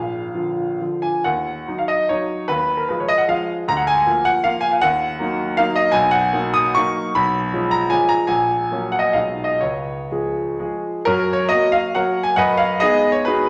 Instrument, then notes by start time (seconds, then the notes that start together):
grand piano
Already playing: A#1 F4 F5
0.34 D3 F3 F4
0.81 D3 F3 F4
1.02 G#5
1.24 D#2 F#5
1.68 F#3 D#4
1.78 F5
1.88 D#5
2.09 F#3 D#4 C#5
2.48 D#2 B4
2.77 A#4
2.89 F3 G#3 F4 B4
3.00 C#5
3.08 D#5
3.18 F#5
3.28 F3 G#3 F4 F5
3.68 D2 A#5
3.77 F#5
3.87 G#5
4.07 F3 A#3 F4
4.25 F#5
4.44 F3 A#3 F4 F5
4.61 G#5
4.72 F5
4.81 D#2 F#5
5.19 F#3 A#3 D#4
5.57 F#3 A#3 D#4 F5
5.76 D#5
5.92 B1 G#5
6.11 F#5
6.33 F#3 A#3 D#4
6.54 D#6
6.75 F#3 A#3 D#4 C#6
7.15 B1 B5
7.53 F3 G#3 C#4
7.71 A#5
7.90 F3 G#3 C#4 G#5
8.09 A#5
8.27 A#1 G#5
8.71 F#3 A#3 C#4
8.92 F#5
8.99 D#5
9.13 B1 F#3 G#3 D#4 F5
9.44 D#5
9.61 C#2 C#5
10.11 F3 G#3 G#4
10.59 F3 G#3 G#4
11.05 F#2 C#4 F#4 A#4
11.33 C#5
11.49 F#3 A#3 F#4 D#5
11.72 F5
11.95 F#3 A#3 F#4 A#4 C#5 F#5
12.23 G#5
12.36 F#2 B4 D#5 F#5
12.57 F5
12.80 G#3 B3 D#4 G#4 B4 D#5
13.12 C#5
13.25 G#3 B3 D#4 F#4 G#4 B4